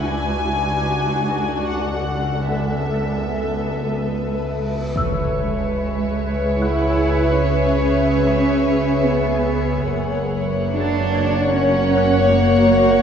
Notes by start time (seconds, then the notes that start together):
0.01 C#2 D4 F#4 A4 D5 F#5 G#5
1.68 F#5
2.49 B3 A4 B4 E5, reverse cymbal
2.94 A6
4.95 C#2 G#4 B4 C#5 E5 E6, impact
5.36 G#3
6.60 E4 F#5 F#6
7.42 C#4
8.27 B5 B6
9.06 B3
9.88 F#1 A#3 F#4 C#5 F#5
10.71 D4
11.15 G#6
11.53 C#4
11.97 F#6
12.36 A#3